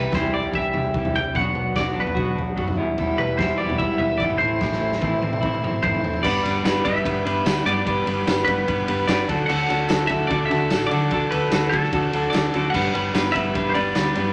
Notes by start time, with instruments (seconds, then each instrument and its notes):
Already playing: picked electric bass C2, overdriven electric guitar C3 E3 G3 E4 G4, clean electric guitar B4
0.12 picked electric bass C2, overdriven electric guitar C3 E3 G3 E4, clean electric guitar C5, kick, snare, floor tom
0.16 overdriven electric guitar G4
0.32 overdriven electric guitar C4 G4, clean electric guitar D5
0.37 overdriven electric guitar E4
0.43 floor tom
0.52 picked electric bass C2, overdriven electric guitar E3 G4, clean electric guitar E5, kick
0.56 overdriven electric guitar G3 E4 G4
0.73 picked electric bass C2, overdriven electric guitar C4, floor tom
0.94 picked electric bass C2, overdriven electric guitar E3 G3 E4, kick
0.98 overdriven electric guitar G4
1.05 floor tom
1.14 picked electric bass C2, overdriven electric guitar G3 G4, clean electric guitar G5
1.18 overdriven electric guitar G3 E4
1.33 picked electric bass B1, overdriven electric guitar B2, clean electric guitar F#5, kick, floor tom
1.38 overdriven electric guitar B2 F#3 B3 D4 F#4
1.54 picked electric bass B1, overdriven electric guitar B3, mid tom
1.76 picked electric bass B1, overdriven electric guitar B2 F#3 B3, clean electric guitar D5, kick, snare, floor tom
1.80 overdriven electric guitar D4 F#4
1.97 picked electric bass B1, overdriven electric guitar B3 D4 F#4, clean electric guitar B4
2.07 floor tom
2.16 picked electric bass B1, overdriven electric guitar F#3 B3 D4 F#4, kick
2.35 picked electric bass B1, overdriven electric guitar D4, floor tom
2.56 picked electric bass F#2, overdriven electric guitar F#3 B3 D4 F#4, kick
2.68 floor tom
2.77 picked electric bass E1, overdriven electric guitar E2 B2 E3 G3 B3 E4
2.97 picked electric bass E1, overdriven electric guitar E2 B2 E3 G3 B3 E4, transistor combo organ G4 B4 E5 B5, kick, floor tom
3.18 picked electric bass E1, overdriven electric guitar G3, clean electric guitar B4, mid tom
3.38 picked electric bass E1, overdriven electric guitar E2 B2 E3 G3 B3 E4, clean electric guitar C5, kick, snare, floor tom
3.58 overdriven electric guitar G3 B3 E4, clean electric guitar D5
3.62 overdriven electric guitar E3
3.69 floor tom
3.78 picked electric bass E1, overdriven electric guitar E3 G3 B3, clean electric guitar E5, kick
3.83 overdriven electric guitar E4
3.98 picked electric bass E1, overdriven electric guitar B3, clean electric guitar E5, floor tom
4.18 picked electric bass G#1, overdriven electric guitar E3 G3, clean electric guitar D5, kick
4.23 overdriven electric guitar B3 E4
4.30 floor tom
4.38 picked electric bass A1, overdriven electric guitar A3 C4 E4, transistor combo organ A4 C5 C6, clean electric guitar C5
4.43 overdriven electric guitar A2 E3
4.61 picked electric bass A1, overdriven electric guitar A2 E3 A3 C4 E4, kick, snare
4.72 snare
4.81 picked electric bass A1, overdriven electric guitar A3
4.92 snare
5.01 picked electric bass A1, overdriven electric guitar A2 E3 A3 C4 E4, kick, high tom
5.22 picked electric bass A1, overdriven electric guitar A3 C4 E4, high tom
5.33 mid tom
5.42 picked electric bass A1, overdriven electric guitar E3 A3 C4 E4, kick
5.54 mid tom
5.62 picked electric bass A1, overdriven electric guitar C4, mid tom
5.83 picked electric bass E2, overdriven electric guitar E3 A3 C4 E4, clean electric guitar C5, kick, mid tom
5.95 floor tom
6.04 overdriven electric guitar A3 C4 E4, floor tom
6.14 floor tom
6.23 picked electric bass G1, overdriven electric guitar G3 B3 D4 B4, transistor combo organ B4 D5 G5 D6, clean electric guitar D5, kick, crash
6.45 picked electric bass G1, overdriven electric guitar G3 B3 D4 B4, snare, ride
6.63 picked electric bass G1, overdriven electric guitar G3 B3 D4 B4, snare, ride, tambourine
6.84 picked electric bass G1, overdriven electric guitar G3 B3 D4 B4, clean electric guitar E5, kick, ride
7.04 picked electric bass G1, overdriven electric guitar G3 B3 D4 B4, kick, ride
7.25 picked electric bass G1, overdriven electric guitar G3 B3 D4 B4, ride
7.44 picked electric bass D2, overdriven electric guitar G3 B3 D4 B4, snare, ride, tambourine
7.64 picked electric bass G2, overdriven electric guitar G3 B3 D4 B4, clean electric guitar D5, ride
7.85 picked electric bass G1, overdriven electric guitar G3 B3 D4 B4, kick, ride
8.06 picked electric bass G1, overdriven electric guitar G3 B3 D4 B4, snare, ride
8.27 picked electric bass G1, overdriven electric guitar G3 B3 D4 B4, snare, ride, tambourine
8.45 picked electric bass G1, overdriven electric guitar G3 D4, clean electric guitar B4, kick, ride
8.49 overdriven electric guitar B3 B4
8.68 picked electric bass G1, overdriven electric guitar G3 B3 D4 B4, kick, ride
8.88 picked electric bass G1, overdriven electric guitar G3 B3 D4 B4, ride
9.08 picked electric bass G1, overdriven electric guitar G3 B3 D4 B4, clean electric guitar D5, snare, ride, tambourine
9.29 picked electric bass D2, overdriven electric guitar D3 D4 F#4 A4, transistor combo organ A4 F#5, kick, ride
9.46 picked electric bass D2, overdriven electric guitar D3 D4 F#4 A4, clean electric guitar F#5, crash
9.70 picked electric bass D2, overdriven electric guitar D3 D4 F#4 A4, ride
9.89 picked electric bass D2, overdriven electric guitar D3 D4 F#4 A4, snare, ride, tambourine
10.07 picked electric bass D2, overdriven electric guitar D3 D4 F#4 A4, clean electric guitar E5, kick, ride
10.27 picked electric bass D2, overdriven electric guitar D3 D4 A4, clean electric guitar D5, kick, ride
10.31 overdriven electric guitar F#4
10.46 clean electric guitar E5
10.50 picked electric bass D2, overdriven electric guitar D3 D4 F#4 A4, ride
10.70 picked electric bass A1, overdriven electric guitar D3 D4 F#4 A4, snare, ride, tambourine
10.87 clean electric guitar D5
10.91 overdriven electric guitar D3 D4 F#4 A4, picked electric bass D3, ride
11.11 picked electric bass D2, overdriven electric guitar D3 D4 F#4 A4, kick, ride
11.31 picked electric bass D2, overdriven electric guitar D3 D4 F#4 A4, clean electric guitar B4, ride
11.50 picked electric bass D2, overdriven electric guitar D3 D4 F#4 A4, snare, ride, tambourine
11.69 picked electric bass D2, overdriven electric guitar D3 D4 F#4 A4, clean electric guitar A4, kick, ride
11.84 snare
11.92 picked electric bass D2, overdriven electric guitar D3 D4 F#4 A4, kick, ride
12.13 picked electric bass D2, overdriven electric guitar D3 D4 F#4 A4, ride
12.30 picked electric bass D2, clean electric guitar D5, tambourine
12.34 overdriven electric guitar D3 D4 F#4 A4, snare, ride
12.54 picked electric bass D2, overdriven electric guitar D3 D4 F#4 A4, ride
12.70 picked electric bass G1, clean electric guitar F#5
12.74 overdriven electric guitar G3 B3 D4 B4, transistor combo organ G4 B4, kick, crash
12.94 picked electric bass G1, overdriven electric guitar G3 B3 D4 B4, ride
13.14 picked electric bass G1, overdriven electric guitar G3 B3 D4 B4, snare, ride, tambourine
13.32 picked electric bass G1, overdriven electric guitar G3 D4, clean electric guitar E5, kick, ride
13.37 overdriven electric guitar B3 B4
13.55 picked electric bass G1, overdriven electric guitar G3 B3 D4 B4, kick, ride
13.69 clean electric guitar C5
13.74 picked electric bass G1, overdriven electric guitar G3 B3 D4 B4, clean electric guitar D5, ride
13.95 picked electric bass D2, overdriven electric guitar G3 B3 D4 B4, snare, ride, tambourine
14.15 picked electric bass G2, overdriven electric guitar G3 B3 D4 B4, ride